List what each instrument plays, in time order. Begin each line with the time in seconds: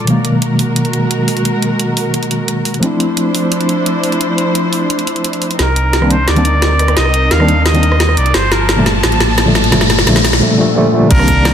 0.04 tine electric piano B2 D#3 F#3, string section G#3 F#4 A#4, closed hi-hat
0.09 tine electric piano G#3 A#3
0.25 closed hi-hat
0.42 closed hi-hat
0.59 open hi-hat
0.76 closed hi-hat
0.85 closed hi-hat
0.93 closed hi-hat
1.11 closed hi-hat
1.28 open hi-hat
1.37 closed hi-hat
1.45 closed hi-hat
1.62 closed hi-hat
1.80 closed hi-hat
1.97 open hi-hat
2.14 closed hi-hat
2.23 closed hi-hat
2.31 closed hi-hat
2.48 closed hi-hat
2.65 open hi-hat
2.74 closed hi-hat
2.80 tine electric piano F3 A3 C4, string section F3 D4 E4 C5, closed hi-hat
2.84 tine electric piano D4 E4
3.00 closed hi-hat
3.17 closed hi-hat
3.35 open hi-hat
3.52 closed hi-hat
3.61 closed hi-hat
3.69 closed hi-hat
3.86 closed hi-hat
4.04 open hi-hat
4.12 closed hi-hat
4.21 closed hi-hat
4.38 closed hi-hat
4.55 closed hi-hat
4.73 open hi-hat
4.90 closed hi-hat
4.99 closed hi-hat
5.07 closed hi-hat
5.16 closed hi-hat
5.24 closed hi-hat
5.33 closed hi-hat
5.42 open hi-hat
5.51 closed hi-hat
5.59 sub bass C2, string section C4 D#4 A#4, muted trumpet A#4, snare, closed hi-hat, riser
5.76 closed hi-hat
5.93 snare, closed hi-hat
6.01 tine electric piano D#3 G3 A#3 C4 D4, cross-stick
6.11 muted trumpet C5, closed hi-hat
6.28 sub bass D2, muted trumpet D5, snare, closed hi-hat
6.35 tine electric piano D#3 G3 A#3 C4 D4, closed hi-hat
6.45 closed hi-hat
6.62 snare, closed hi-hat
6.79 cross-stick, closed hi-hat
6.88 cross-stick, closed hi-hat
6.97 sub bass C2, muted trumpet D#5, snare, closed hi-hat
7.05 cross-stick
7.14 closed hi-hat
7.31 sub bass D#2, muted trumpet F5, snare, closed hi-hat
7.38 tine electric piano D#3 G3 A#3 C4 D4, cross-stick
7.48 closed hi-hat
7.66 muted trumpet D#5, snare, closed hi-hat
7.73 tine electric piano D#3 G3 A#3 C4 D4, closed hi-hat
7.83 closed hi-hat
7.92 cross-stick
8.00 snare, closed hi-hat
8.09 cross-stick
8.17 sub bass C2, muted trumpet D5, closed hi-hat
8.26 closed hi-hat
8.34 sub bass G1, string section F3 A#3 A5, muted trumpet C5, snare, closed hi-hat
8.52 muted trumpet A#4, snare, closed hi-hat
8.69 snare, closed hi-hat
8.76 tine electric piano A#2 D3 F3 G3 A3
8.86 snare, closed hi-hat
9.04 sub bass A1, snare, closed hi-hat
9.12 closed hi-hat
9.20 snare, closed hi-hat
9.38 snare, closed hi-hat
9.45 tine electric piano A#2 D3 F3 G3 A3
9.55 snare, closed hi-hat
9.64 closed hi-hat
9.71 sub bass G1, tine electric piano A#2 D3 F3 G3 A3, snare, closed hi-hat
9.81 snare
9.90 snare, closed hi-hat
9.99 snare
10.05 sub bass A#1, tine electric piano A#2 D3 F3 G3 A3, snare, closed hi-hat
10.16 snare
10.25 snare, open hi-hat
10.33 snare
10.40 tine electric piano A#2 D3 F3 G3 A3
10.57 tine electric piano A#2 D3 F3 G3 A3
10.75 tine electric piano A#2 D3 F3 G3 A3
10.92 tine electric piano A#2 D3 F3 G3 A3
11.07 sub bass C2, tine electric piano D#3 G3 A#3, string section G3 A#3 D4, muted trumpet A#4, kick, closed hi-hat, crash
11.13 tine electric piano D4
11.19 cross-stick
11.28 kick, closed hi-hat, cabasa
11.45 snare, closed hi-hat